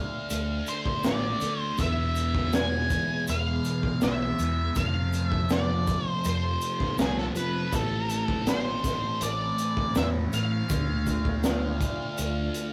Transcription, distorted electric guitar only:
0.00 1.03 D3 medium
0.00 1.02 A3 medium
0.00 1.02 D4 medium
1.04 1.76 D3 medium
1.04 1.77 A3 medium
1.04 1.78 D4 medium
1.77 2.87 E2 medium
1.77 2.88 B2 medium
1.77 2.88 E3 medium
2.90 4.00 B2 medium
2.90 3.99 E3 medium
2.94 4.00 E2 medium
4.01 4.73 E2 medium
4.01 4.75 B2 medium
4.01 4.75 E3 medium
4.75 5.85 F2 medium
4.75 5.86 C3 medium
4.80 5.86 F3 medium
5.88 6.97 C3 medium
5.88 6.96 F3 medium
5.92 6.97 F2 medium
6.98 7.70 F2 medium
6.98 7.71 C3 medium
6.98 7.72 F3 medium
7.72 8.81 A2 medium
7.72 8.85 E3 medium
7.76 8.83 A3 medium
8.84 9.93 A2 medium
8.84 9.96 E3 medium
8.84 9.93 A3 medium
9.94 10.67 A2 medium
9.94 10.71 E3 medium
9.94 10.68 A3 medium
10.68 11.78 D3 medium
10.68 11.79 A3 medium
10.73 11.79 D4 medium
11.80 12.73 D3 medium
11.80 12.73 A3 medium
11.80 12.73 D4 medium

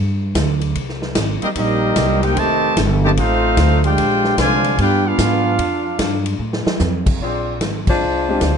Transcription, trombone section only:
1.41 1.48 G3 medium
1.41 1.48 A#3 medium
1.41 1.48 D#4 medium
1.55 2.18 G3 medium
1.55 2.18 A#3 medium
1.55 2.18 D#4 medium
2.22 2.36 A#3 medium
2.22 2.36 D#4 medium
2.22 2.36 G4 medium
2.36 2.77 C3 loud
2.36 2.77 D#3 loud
2.36 2.77 A3 loud
3.03 3.10 C3 medium
3.03 3.10 D#3 medium
3.03 3.10 A3 medium
3.17 3.80 A3 medium
3.17 3.80 C4 medium
3.17 3.80 F4 medium
3.84 4.37 G#3 medium
3.84 4.38 D4 loud
3.84 4.38 G4 medium
4.38 4.75 D3 medium
4.38 4.75 F3 medium
4.38 4.75 G#3 medium
4.78 5.03 B3 medium
4.78 5.03 D4 medium
4.78 5.03 G4 medium
5.06 5.59 B3 medium
5.06 6.26 D4 medium
5.06 6.27 F4 loud

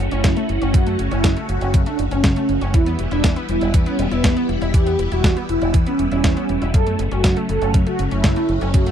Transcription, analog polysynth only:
0.12 0.64 E4 medium
0.74 1.00 F#4 loud
1.11 1.37 E4 medium
1.49 1.74 F#4 medium
1.86 2.03 D4 medium
2.12 2.64 C#4 loud
2.74 2.99 E4 medium
3.12 3.37 D4 medium
3.49 3.74 E4 medium
3.86 4.03 C#4 medium
4.11 4.64 B3 loud
4.74 4.99 G4 loud
5.12 5.37 F#4 medium
5.49 5.74 E4 medium
5.86 6.03 C#4 medium
6.11 6.64 C#4 loud
6.74 6.99 A4 loud
7.12 7.37 F#4 medium
7.49 7.74 A4 medium
7.87 8.04 F#4 medium
8.12 8.64 E4 loud
8.74 8.91 F#4 loud

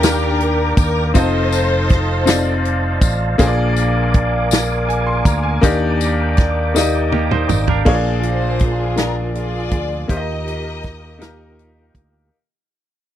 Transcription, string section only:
0.00 0.74 D4 medium
0.00 0.74 G4 medium
0.00 0.74 A#4 medium
0.79 1.13 A#4 medium
1.16 2.98 D#4 medium
1.16 2.98 A4 medium
1.16 3.03 C5 loud
8.26 9.33 F4 medium
8.26 9.33 G#4 medium
8.26 8.95 C5 medium
8.99 9.15 A#4 medium
9.37 10.07 F4 medium
9.37 10.06 G#4 medium
9.37 10.07 D5 loud
10.11 11.92 G4 medium
10.11 11.92 A#4 medium
10.11 11.97 D#5 loud

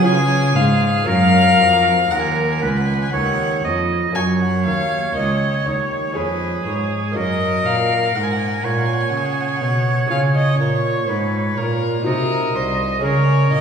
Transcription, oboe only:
0.04 1.09 G#4 medium
1.07 2.01 A#4 medium
2.11 2.64 A#4 medium
2.63 3.12 B4 medium
3.13 3.64 C#5 medium
3.65 4.15 D#5 medium
4.16 6.19 C#5 medium
6.17 7.18 G#4 soft
7.17 8.15 A#4 medium
8.16 8.66 A#4 medium
8.65 11.79 C#5 medium
12.06 13.00 D#5 medium
13.03 13.61 A#4 medium

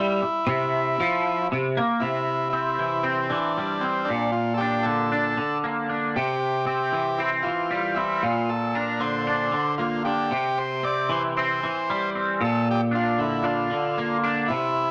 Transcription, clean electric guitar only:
0.00 0.20 G3 loud
0.23 muted clean electric guitar stroke medium
0.47 0.98 C3 loud
1.00 1.50 F3 loud
1.52 1.76 C3 loud
1.77 2.02 A#3 loud
2.02 3.31 C3 medium
2.53 3.02 C4 medium
2.79 3.29 E3 medium
3.03 3.83 C4 medium
3.30 4.08 E3 medium
3.58 4.09 G3 medium
3.84 4.09 C4 medium
4.10 5.39 A#2 medium
4.61 5.11 D4 medium
4.86 5.36 D3 medium
5.12 5.88 D4 medium
5.37 6.16 D3 medium
5.64 6.16 A#3 medium
5.89 6.16 D4 medium
6.16 7.46 C3 medium
6.66 7.19 C4 medium
6.92 7.43 E3 medium
7.20 7.96 C4 medium
7.45 8.23 E3 medium
7.71 8.23 G3 medium
7.97 8.23 C4 medium
8.23 9.53 A#2 medium
8.75 9.26 D4 medium
9.00 9.50 D3 medium
9.27 10.04 D4 medium
9.52 10.31 D3 medium
9.79 10.31 A#3 medium
10.06 10.32 D4 medium
10.31 11.61 C3 medium
10.83 11.36 C4 medium
11.09 11.62 E3 medium
11.37 12.14 C4 medium
11.63 12.41 E3 medium
11.90 12.41 G3 medium
12.15 12.41 C4 medium
12.41 13.70 A#2 medium
12.91 13.43 D4 medium
13.19 13.70 D3 medium
13.44 14.22 D4 medium
13.71 14.48 D3 medium
13.98 14.49 A#3 medium
14.24 14.49 D4 medium
14.50 14.91 C3 medium

